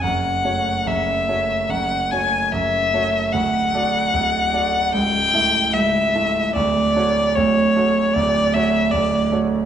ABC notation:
X:1
M:4/4
L:1/8
Q:1/4=75
K:Dlyd
V:1 name="Violin"
f2 e2 f g e2 | f4 =g2 e2 | d2 c2 d e d z |]
V:2 name="Grand piano"
[F,,,F,,] [A,Fc] [F,,,F,,] [A,Fc] [F,,,F,,] [A,Fc] [F,,,F,,] [A,Fc] | [D,,,D,,] [A,Fd] [D,,,D,,] [A,Fd] [C,,,C,,] [A,Ee] [C,,,C,,] [A,Ee] | [D,,,D,,] [A,Fc] [D,,,D,,] [A,Fc] [D,,,D,,] [A,Fc] [D,,,D,,] [A,Fc] |]